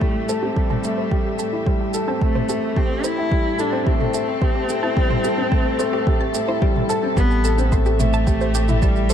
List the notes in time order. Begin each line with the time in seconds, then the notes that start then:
Already playing: A1 A2 A3 C4 E4 G4 A4 E5
0.01 G3 A5, kick
0.29 A4 C5, shaker
0.42 C4 G4
0.56 G3 A3, kick
0.70 A4 A5, mid tom
0.84 A3, shaker
0.98 C5
1.11 G4, kick
1.25 G4
1.39 A3 A5, shaker
1.53 E4
1.66 G3 C5, kick
1.81 G4
1.94 A4, shaker
2.08 C4 A5
2.21 A3, kick
2.35 A4 C5, mid tom
2.49 A3 G4, shaker
2.75 C4 G4 A4 A5, kick
2.90 G4
3.04 A3 E4 C5, shaker
3.18 E4 G4
3.31 G3, kick
3.46 A5
3.59 D4 A4, shaker
3.72 C4 C5
3.86 A3 C4 G4, kick
4.00 A4, mid tom
4.14 A3 A5, shaker
4.41 G4 C5, kick
4.55 G4
4.69 A3, shaker
4.83 E4 A5
4.96 G3, kick
5.10 C5, mid tom
5.24 G4 A4, shaker
5.38 C4
5.52 A3 A5, kick
5.65 A4
5.79 A3 C5, shaker
5.93 G4
6.07 G4, kick
6.20 G4 A5
6.34 A3, shaker
6.48 E4 C5
6.62 G3 G4, kick
6.76 mid tom
6.89 A4 A5, shaker
7.03 C4
7.17 A1 A2 G3 B3 G4, kick, shaker
7.23 A3
7.31 shaker
7.44 A4 A5, shaker
7.58 C4 E5, shaker
7.72 A3 C5, kick, shaker
7.86 G4 A4, shaker
7.99 A3 G4, mid tom, shaker
8.13 A5, shaker
8.27 G4, kick, shaker
8.41 G4 C5, shaker
8.55 A3 G4, shaker
8.68 E4, mid tom, shaker
8.82 G3 A5, kick, shaker
8.96 shaker
9.10 A4 C5, shaker